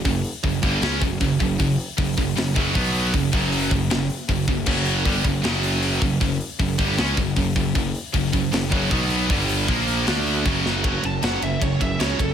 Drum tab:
CC |--------|--------|--------|x-------|
RD |--------|--------|--------|--------|
HH |oooooooo|oooooooo|ooooooo-|-ooooooo|
SD |----o---|----o---|----o---|----o---|
BD |o-oo-ooo|o-oo-oo-|oo-o--oo|o-oo---o|

CC |--------|--------|--------|--------|
RD |--------|--------|--------|xxxxxxxx|
HH |oooooooo|ooooo-oo|ooooooo-|--------|
SD |----o---|----o---|----o--o|--o---o-|
BD |o-oo-ooo|o-oo-oo-|o-o---o-|o---oo-o|